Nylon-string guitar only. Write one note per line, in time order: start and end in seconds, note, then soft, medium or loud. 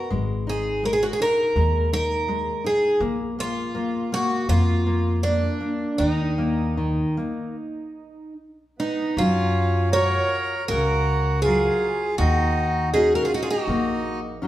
0.10 0.82 G#3 medium
0.47 0.83 D#4 medium
0.84 1.19 G#3 medium
1.20 1.55 D#4 soft
1.56 1.91 G#3 medium
1.93 2.27 D#4 medium
2.28 2.63 G#3 medium
2.64 3.00 D#4 medium
3.01 3.37 A#3 medium
3.39 3.74 A#3 medium
3.75 4.10 A#3 medium
4.12 4.48 A#3 medium
4.49 4.85 A#3 medium
4.87 5.23 A#3 medium
5.24 5.59 A#3 medium
5.61 5.98 A#3 soft
5.99 6.76 D#3 medium
6.38 6.76 A#3 medium
6.77 7.15 D#3 medium
7.17 7.55 A#3 soft
9.18 9.92 F#3 medium
9.93 10.54 F4 soft
9.93 10.54 F#4 soft
9.93 10.54 A#4 medium
10.71 11.43 C#3 medium
11.45 12.06 F#3 soft
11.45 12.05 F4 soft
11.45 12.06 A#4 medium
12.20 12.92 D#3 medium
12.94 13.53 C#4 medium
12.94 13.54 D#4 soft
12.94 13.54 F#4 medium
13.69 14.40 A#3 medium
14.42 14.47 F#3 medium
14.42 14.47 C#4 soft
14.42 14.47 D#4 soft